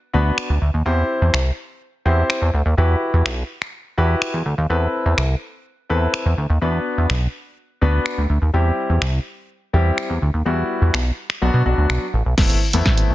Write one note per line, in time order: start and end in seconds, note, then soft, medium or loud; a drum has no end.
0.13 0.31 D2 medium
0.13 0.51 B3 medium
0.13 0.51 D4 medium
0.13 0.51 F#4 medium
0.13 0.52 B4 medium
0.38 finger snap loud
0.50 0.59 D2 medium
0.62 0.71 D2 medium
0.74 0.83 D#2 medium
0.85 1.03 E2 loud
0.85 1.36 C4 medium
0.85 1.36 E4 medium
0.85 1.36 G4 medium
0.85 1.36 C5 medium
1.22 1.30 E2 medium
1.34 1.51 C2 medium
1.34 finger snap loud
2.05 2.23 E2 loud
2.05 2.43 C4 medium
2.05 2.43 E4 medium
2.05 2.43 G4 medium
2.05 2.44 C5 medium
2.30 finger snap loud
2.42 2.50 E2 loud
2.54 2.62 D2 medium
2.66 2.75 D#2 medium
2.77 2.95 E2 loud
2.77 3.28 E4 medium
2.77 3.28 F#4 medium
2.77 3.28 G4 medium
2.77 3.28 B4 medium
3.14 3.22 E2 loud
3.26 3.43 B1 medium
3.26 finger snap loud
3.62 finger snap medium
3.97 4.15 E2 medium
3.97 4.35 E4 medium
3.97 4.35 F#4 medium
3.97 4.35 G4 medium
3.97 4.36 B4 medium
4.22 finger snap loud
4.34 4.43 E2 medium
4.46 4.55 D2 medium
4.58 4.67 D#2 loud
4.70 4.87 E2 loud
4.70 5.20 C4 medium
4.70 5.20 E4 medium
4.70 5.20 A4 medium
4.70 5.20 B4 medium
5.06 5.15 E2 loud
5.18 5.35 C2 medium
5.18 finger snap loud
5.89 6.07 E2 medium
5.89 6.27 C4 medium
5.89 6.27 E4 medium
5.89 6.27 A4 medium
5.89 6.28 B4 medium
6.14 finger snap loud
6.26 6.35 E2 loud
6.38 6.46 D2 loud
6.50 6.58 D#2 medium
6.61 6.79 E2 loud
6.61 7.12 B3 medium
6.61 7.12 D4 medium
6.61 7.12 F#4 medium
6.61 7.12 B4 medium
6.98 7.07 E2 medium
7.10 7.27 B1 loud
7.10 finger snap loud
7.81 7.99 D2 loud
7.81 8.19 B3 medium
7.81 8.19 D4 medium
7.81 8.19 F#4 medium
7.81 8.20 B4 loud
8.06 finger snap loud
8.18 8.27 D2 medium
8.30 8.39 D2 medium
8.42 8.51 D#2 medium
8.54 8.71 E2 loud
8.54 9.04 G3 medium
8.54 9.04 C4 medium
8.54 9.04 E4 medium
8.54 9.04 G4 medium
8.90 8.99 E2 medium
9.02 9.19 C2 medium
9.02 finger snap loud
9.73 9.91 E2 loud
9.73 10.11 G3 medium
9.73 10.11 C4 medium
9.73 10.11 E4 medium
9.73 10.11 G4 loud
9.98 finger snap loud
10.10 10.19 E2 loud
10.22 10.31 D2 medium
10.34 10.43 D#2 medium
10.45 10.63 E2 loud
10.45 10.96 G3 medium
10.45 10.96 B3 medium
10.45 10.96 E4 medium
10.45 10.96 F#4 medium
10.82 10.91 E2 medium
10.94 11.11 B1 medium
10.94 finger snap loud
11.30 finger snap medium
11.41 11.51 B1 loud
11.41 11.61 F#3 medium
11.41 11.61 B3 medium
11.41 11.61 D4 medium
11.41 11.61 F#4 loud
11.54 11.63 B2 loud
11.66 11.75 B1 medium
11.66 12.03 F#3 medium
11.66 12.03 B3 medium
11.66 12.04 D4 medium
11.66 12.04 F#4 medium
11.78 11.87 D2 medium
11.90 11.99 B1 medium
11.90 finger snap loud
12.14 12.23 A1 loud
12.26 12.34 B1 medium
12.37 12.56 A3 medium
12.37 12.56 B3 medium
12.37 12.57 C4 medium
12.37 12.57 E4 medium
12.37 kick loud
12.37 snare medium
12.37 crash medium
12.50 closed hi-hat soft
12.73 12.82 E2 medium
12.73 13.15 A3 medium
12.73 13.15 B3 medium
12.73 13.15 C4 medium
12.73 13.15 E4 medium
12.73 closed hi-hat medium
12.86 13.03 A1 loud
12.86 kick loud
12.86 snare medium
12.98 closed hi-hat medium
13.10 13.15 B1 medium